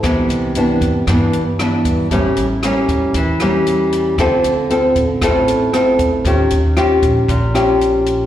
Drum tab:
HH |xxxxxxxx|xxxxxxxx|xxxxxxxx|xxxxxxxx|
SD |r---r-r-|--r--r--|r---r-r-|--r--r--|
BD |o--oo--o|o--oo---|o--oo--o|o--oo---|